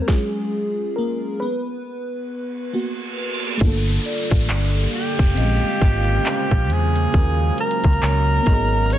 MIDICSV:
0, 0, Header, 1, 9, 480
1, 0, Start_track
1, 0, Tempo, 882353
1, 45, Time_signature, 4, 2, 24, 8
1, 4888, End_track
2, 0, Start_track
2, 0, Title_t, "Celesta"
2, 0, Program_c, 0, 8
2, 2206, Note_on_c, 0, 74, 82
2, 2848, Note_off_c, 0, 74, 0
2, 2923, Note_on_c, 0, 75, 76
2, 3566, Note_off_c, 0, 75, 0
2, 4366, Note_on_c, 0, 73, 77
2, 4823, Note_off_c, 0, 73, 0
2, 4888, End_track
3, 0, Start_track
3, 0, Title_t, "Alto saxophone"
3, 0, Program_c, 1, 65
3, 2696, Note_on_c, 1, 67, 93
3, 3657, Note_on_c, 1, 68, 104
3, 3665, Note_off_c, 1, 67, 0
3, 4131, Note_off_c, 1, 68, 0
3, 4136, Note_on_c, 1, 70, 109
3, 4856, Note_on_c, 1, 73, 116
3, 4865, Note_off_c, 1, 70, 0
3, 4888, Note_off_c, 1, 73, 0
3, 4888, End_track
4, 0, Start_track
4, 0, Title_t, "FM electric piano"
4, 0, Program_c, 2, 5
4, 0, Control_c, 2, 64, 127
4, 0, Note_on_c, 2, 60, 77
4, 9, Note_on_c, 2, 70, 66
4, 41, Note_on_c, 2, 68, 94
4, 46, Note_on_c, 2, 54, 57
4, 50, Note_on_c, 2, 61, 52
4, 51, Control_c, 2, 64, 0
4, 54, Note_off_c, 2, 70, 0
4, 54, Note_on_c, 2, 65, 60
4, 55, Note_off_c, 2, 60, 0
4, 55, Note_on_c, 2, 56, 71
4, 147, Control_c, 2, 64, 127
4, 379, Note_off_c, 2, 54, 0
4, 381, Note_off_c, 2, 61, 0
4, 383, Note_off_c, 2, 65, 0
4, 508, Note_off_c, 2, 56, 0
4, 521, Note_on_c, 2, 70, 87
4, 535, Note_on_c, 2, 58, 67
4, 537, Note_off_c, 2, 68, 0
4, 753, Note_off_c, 2, 58, 0
4, 761, Note_on_c, 2, 71, 86
4, 770, Note_off_c, 2, 70, 0
4, 771, Control_c, 2, 64, 0
4, 774, Note_on_c, 2, 59, 65
4, 877, Control_c, 2, 64, 127
4, 1461, Note_off_c, 2, 71, 0
4, 1467, Note_off_c, 2, 59, 0
4, 1487, Note_on_c, 2, 58, 54
4, 1490, Note_on_c, 2, 59, 51
4, 1493, Note_on_c, 2, 66, 62
4, 1944, Note_off_c, 2, 58, 0
4, 1944, Note_on_c, 2, 57, 68
4, 1945, Note_off_c, 2, 59, 0
4, 1947, Note_off_c, 2, 66, 0
4, 1961, Note_on_c, 2, 62, 76
4, 1972, Control_c, 2, 64, 0
4, 1978, Note_on_c, 2, 65, 78
4, 1979, Note_on_c, 2, 58, 80
4, 1995, Note_off_c, 2, 57, 0
4, 1996, Note_on_c, 2, 69, 88
4, 2076, Control_c, 2, 64, 127
4, 2903, Note_on_c, 2, 60, 67
4, 2904, Note_off_c, 2, 62, 0
4, 2912, Note_off_c, 2, 65, 0
4, 2913, Note_off_c, 2, 58, 0
4, 2920, Note_on_c, 2, 61, 62
4, 2922, Note_off_c, 2, 69, 0
4, 2931, Control_c, 2, 64, 0
4, 2938, Note_on_c, 2, 65, 64
4, 2955, Note_on_c, 2, 56, 73
4, 3042, Control_c, 2, 64, 127
4, 3854, Note_off_c, 2, 60, 0
4, 3863, Note_off_c, 2, 61, 0
4, 3872, Note_off_c, 2, 65, 0
4, 3876, Note_on_c, 2, 61, 68
4, 3881, Note_off_c, 2, 56, 0
4, 3885, Note_on_c, 2, 65, 66
4, 3892, Control_c, 2, 64, 0
4, 3893, Note_on_c, 2, 66, 65
4, 3902, Note_on_c, 2, 70, 80
4, 3981, Control_c, 2, 64, 127
4, 4582, Note_on_c, 2, 59, 71
4, 4599, Note_on_c, 2, 63, 62
4, 4600, Note_off_c, 2, 61, 0
4, 4605, Note_off_c, 2, 65, 0
4, 4609, Note_off_c, 2, 66, 0
4, 4610, Control_c, 2, 64, 0
4, 4613, Note_off_c, 2, 70, 0
4, 4616, Note_on_c, 2, 66, 66
4, 4634, Note_on_c, 2, 68, 77
4, 4701, Control_c, 2, 64, 127
4, 4888, Note_off_c, 2, 59, 0
4, 4888, Note_off_c, 2, 63, 0
4, 4888, Note_off_c, 2, 66, 0
4, 4888, Note_off_c, 2, 68, 0
4, 4888, End_track
5, 0, Start_track
5, 0, Title_t, "Ambient pad"
5, 0, Program_c, 3, 92
5, 1962, Note_on_c, 3, 50, 81
5, 1962, Note_on_c, 3, 58, 75
5, 1962, Note_on_c, 3, 69, 76
5, 1963, Note_on_c, 3, 55, 72
5, 1963, Note_on_c, 3, 77, 88
5, 2914, Note_off_c, 3, 50, 0
5, 2914, Note_off_c, 3, 55, 0
5, 2914, Note_off_c, 3, 69, 0
5, 2924, Note_on_c, 3, 49, 82
5, 2924, Note_on_c, 3, 56, 77
5, 2924, Note_on_c, 3, 72, 73
5, 3875, Note_off_c, 3, 49, 0
5, 3875, Note_off_c, 3, 56, 0
5, 3875, Note_off_c, 3, 72, 0
5, 3884, Note_on_c, 3, 61, 74
5, 3885, Note_on_c, 3, 51, 82
5, 3885, Note_on_c, 3, 54, 77
5, 4582, Note_off_c, 3, 58, 0
5, 4582, Note_off_c, 3, 77, 0
5, 4597, Note_off_c, 3, 54, 0
5, 4597, Note_off_c, 3, 61, 0
5, 4598, Note_off_c, 3, 51, 0
5, 4603, Note_on_c, 3, 56, 73
5, 4604, Note_on_c, 3, 59, 75
5, 4605, Note_on_c, 3, 51, 82
5, 4605, Note_on_c, 3, 66, 93
5, 4888, Note_off_c, 3, 51, 0
5, 4888, Note_off_c, 3, 56, 0
5, 4888, Note_off_c, 3, 59, 0
5, 4888, Note_off_c, 3, 66, 0
5, 4888, End_track
6, 0, Start_track
6, 0, Title_t, "Fingered electric bass"
6, 0, Program_c, 4, 33
6, 1964, Note_on_c, 4, 31, 105
6, 2158, Note_off_c, 4, 31, 0
6, 2347, Note_on_c, 4, 33, 89
6, 2427, Note_off_c, 4, 33, 0
6, 2445, Note_on_c, 4, 31, 94
6, 2638, Note_off_c, 4, 31, 0
6, 2825, Note_on_c, 4, 29, 87
6, 2906, Note_off_c, 4, 29, 0
6, 2924, Note_on_c, 4, 34, 111
6, 3037, Note_off_c, 4, 34, 0
6, 3164, Note_on_c, 4, 32, 103
6, 3358, Note_off_c, 4, 32, 0
6, 3544, Note_on_c, 4, 34, 94
6, 3645, Note_off_c, 4, 34, 0
6, 3645, Note_on_c, 4, 40, 90
6, 3839, Note_off_c, 4, 40, 0
6, 3885, Note_on_c, 4, 39, 111
6, 4079, Note_off_c, 4, 39, 0
6, 4267, Note_on_c, 4, 37, 81
6, 4347, Note_off_c, 4, 37, 0
6, 4365, Note_on_c, 4, 37, 103
6, 4558, Note_off_c, 4, 37, 0
6, 4606, Note_on_c, 4, 32, 95
6, 4888, Note_off_c, 4, 32, 0
6, 4888, End_track
7, 0, Start_track
7, 0, Title_t, "Downlifter"
7, 0, Program_c, 5, 103
7, 1963, Note_on_c, 5, 60, 84
7, 4888, Note_off_c, 5, 60, 0
7, 4888, End_track
8, 0, Start_track
8, 0, Title_t, "Reverse cymbal"
8, 0, Program_c, 6, 119
8, 1004, Note_on_c, 6, 60, 79
8, 1964, Note_off_c, 6, 60, 0
8, 4888, End_track
9, 0, Start_track
9, 0, Title_t, "Drums"
9, 45, Note_on_c, 9, 36, 105
9, 46, Note_on_c, 9, 38, 84
9, 99, Note_off_c, 9, 36, 0
9, 100, Note_off_c, 9, 38, 0
9, 1964, Note_on_c, 9, 36, 120
9, 1964, Note_on_c, 9, 42, 74
9, 1964, Note_on_c, 9, 49, 98
9, 2018, Note_off_c, 9, 42, 0
9, 2019, Note_off_c, 9, 36, 0
9, 2019, Note_off_c, 9, 49, 0
9, 2204, Note_on_c, 9, 42, 63
9, 2258, Note_off_c, 9, 42, 0
9, 2274, Note_on_c, 9, 42, 61
9, 2328, Note_off_c, 9, 42, 0
9, 2343, Note_on_c, 9, 42, 53
9, 2347, Note_on_c, 9, 36, 86
9, 2394, Note_off_c, 9, 42, 0
9, 2394, Note_on_c, 9, 42, 59
9, 2401, Note_off_c, 9, 36, 0
9, 2444, Note_off_c, 9, 42, 0
9, 2444, Note_on_c, 9, 42, 58
9, 2446, Note_on_c, 9, 39, 108
9, 2498, Note_off_c, 9, 42, 0
9, 2500, Note_off_c, 9, 39, 0
9, 2683, Note_on_c, 9, 42, 72
9, 2737, Note_off_c, 9, 42, 0
9, 2824, Note_on_c, 9, 36, 104
9, 2879, Note_off_c, 9, 36, 0
9, 2923, Note_on_c, 9, 42, 69
9, 2978, Note_off_c, 9, 42, 0
9, 3163, Note_on_c, 9, 36, 99
9, 3164, Note_on_c, 9, 42, 78
9, 3218, Note_off_c, 9, 36, 0
9, 3218, Note_off_c, 9, 42, 0
9, 3405, Note_on_c, 9, 39, 119
9, 3405, Note_on_c, 9, 42, 72
9, 3459, Note_off_c, 9, 42, 0
9, 3460, Note_off_c, 9, 39, 0
9, 3543, Note_on_c, 9, 36, 86
9, 3598, Note_off_c, 9, 36, 0
9, 3644, Note_on_c, 9, 42, 43
9, 3699, Note_off_c, 9, 42, 0
9, 3784, Note_on_c, 9, 42, 69
9, 3838, Note_off_c, 9, 42, 0
9, 3884, Note_on_c, 9, 36, 116
9, 3884, Note_on_c, 9, 42, 72
9, 3939, Note_off_c, 9, 36, 0
9, 3939, Note_off_c, 9, 42, 0
9, 4124, Note_on_c, 9, 42, 60
9, 4178, Note_off_c, 9, 42, 0
9, 4194, Note_on_c, 9, 42, 65
9, 4248, Note_off_c, 9, 42, 0
9, 4263, Note_on_c, 9, 42, 56
9, 4267, Note_on_c, 9, 36, 85
9, 4314, Note_off_c, 9, 42, 0
9, 4314, Note_on_c, 9, 42, 56
9, 4321, Note_off_c, 9, 36, 0
9, 4365, Note_off_c, 9, 42, 0
9, 4365, Note_on_c, 9, 42, 63
9, 4367, Note_on_c, 9, 39, 107
9, 4419, Note_off_c, 9, 42, 0
9, 4421, Note_off_c, 9, 39, 0
9, 4603, Note_on_c, 9, 42, 78
9, 4606, Note_on_c, 9, 36, 97
9, 4657, Note_off_c, 9, 42, 0
9, 4660, Note_off_c, 9, 36, 0
9, 4843, Note_on_c, 9, 42, 70
9, 4888, Note_off_c, 9, 42, 0
9, 4888, End_track
0, 0, End_of_file